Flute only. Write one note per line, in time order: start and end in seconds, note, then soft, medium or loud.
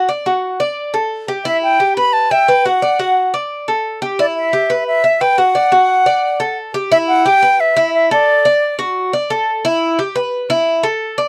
1.45 1.61 E5 medium
1.63 1.94 G5 medium
1.96 2.15 B5 medium
2.13 2.33 A5 loud
2.31 2.67 G5 medium
2.65 3.33 F#5 medium
4.20 4.26 D5 medium
4.37 4.84 E5 medium
4.87 5.23 E5 medium
5.21 5.40 G5 medium
5.38 6.57 F#5 loud
6.92 6.98 E5 loud
7.07 7.27 F#5 medium
7.25 7.62 G5 loud
7.60 7.93 E5 loud
7.94 8.10 E5 medium
8.12 8.76 D5 medium